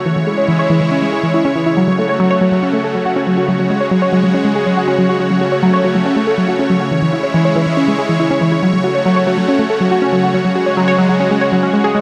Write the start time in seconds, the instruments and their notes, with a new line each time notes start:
Already playing: supersaw synth C#3 C#5
0.05 synth pluck E3, supersaw synth G#3 E4
0.16 synth pluck E3
0.27 synth pluck G#3
0.38 synth pluck C#5
0.48 synth pluck E3
0.59 synth pluck C#5
0.70 synth pluck E3
0.81 synth pluck E3
0.91 synth pluck C#4
1.02 synth pluck G#3
1.13 synth pluck G#4
1.23 synth pluck E3
1.34 synth pluck E4
1.45 synth pluck C#4
1.56 synth pluck E3
1.66 synth pluck E4
1.77 synth pluck F#3, supersaw synth A3 F#4
1.88 synth pluck F#3
1.98 synth pluck A3
2.09 synth pluck C#5
2.20 synth pluck F#3
2.31 synth pluck C#5
2.41 synth pluck F#3
2.52 synth pluck F#3
2.63 synth pluck C#4
2.73 synth pluck A3
2.84 synth pluck A4
2.95 synth pluck F#3
3.05 synth pluck F#4
3.16 synth pluck C#4
3.27 synth pluck F#3
3.38 synth pluck F#4
3.48 synth pluck F#3, supersaw synth G#3 C#5
3.59 synth pluck F#3
3.70 synth pluck G#3
3.81 synth pluck C#5
3.91 synth pluck F#3
4.02 synth pluck C#5
4.13 synth pluck F#3
4.23 synth pluck F#3
4.34 synth pluck C#4
4.45 synth pluck G#3
4.55 synth pluck G#4
4.66 synth pluck F#3
4.77 synth pluck F#4
4.88 synth pluck C#4
4.98 synth pluck F#3
5.09 synth pluck F#4
5.20 synth pluck F#3, supersaw synth A3
5.31 synth pluck F#3
5.41 synth pluck F#4
5.52 synth pluck C#5
5.63 synth pluck F#3
5.74 synth pluck C#5
5.84 synth pluck F#3
5.95 synth pluck F#3
6.06 synth pluck C#4
6.16 synth pluck A3
6.27 synth pluck A4
6.38 synth pluck F#3
6.48 synth pluck F#4
6.59 synth pluck C#4
6.70 synth pluck F#3
6.81 synth pluck F#4
6.91 synth pluck E3, supersaw synth G#3 E4
7.02 synth pluck E3
7.13 synth pluck E4
7.23 synth pluck C#5
7.34 synth pluck E3
7.45 synth pluck C#5
7.56 synth pluck E3
7.66 synth pluck E3
7.77 synth pluck C#4
7.88 synth pluck G#3
7.98 synth pluck G#4
8.09 synth pluck E3
8.20 synth pluck E4
8.30 synth pluck C#4
8.41 synth pluck E3
8.52 synth pluck E4
8.63 supersaw synth C#3 A3 F#4, synth pluck F#3
8.73 synth pluck F#3
8.84 synth pluck F#4
8.95 synth pluck C#5
9.06 synth pluck F#3
9.16 synth pluck C#5
9.27 synth pluck F#3
9.38 synth pluck F#3
9.48 synth pluck C#4
9.59 synth pluck A3
9.70 synth pluck A4
9.81 synth pluck F#3
9.91 synth pluck F#4
10.02 synth pluck C#4
10.13 synth pluck F#3
10.23 synth pluck F#4
10.34 synth pluck F#3, supersaw synth G#3
10.45 synth pluck F#3
10.56 synth pluck F#4
10.66 synth pluck C#5
10.77 synth pluck F#3
10.88 synth pluck C#5
10.98 synth pluck F#3
11.09 synth pluck F#3
11.20 synth pluck C#4
11.31 synth pluck G#3
11.41 synth pluck C#5
11.52 synth pluck F#3
11.63 synth pluck C#4
11.73 synth pluck G#3
11.84 synth pluck G#4
11.95 synth pluck G#3